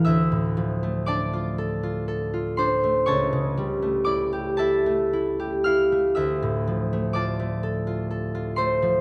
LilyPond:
<<
  \new Staff \with { instrumentName = "Harp" } { \time 6/8 \key d \minor \tempo 4. = 40 <a' e'' f'' a'' e''' f'''>4 <d'' a'' d'''>4. <c'' c'''>8 | <cis'' a'' cis'''>4 <d'' d'''>8 <a' e'' a''>4 <f'' f'''>8 | <e'' e'''>4 <d'' a'' d'''>4. <c'' c'''>8 | }
  \new Staff \with { instrumentName = "Harp" } { \time 6/8 \key d \minor <d, a>16 a,16 f16 a16 d'16 f'16 a'16 f'16 a'16 f'16 d'16 a16 | cis,16 cis16 g16 a16 e'16 g'16 e'16 a16 e'16 g'16 e'16 a16 | d,16 a,16 f16 a16 f'16 a16 a'16 f'16 a'16 f'16 a16 f16 | }
>>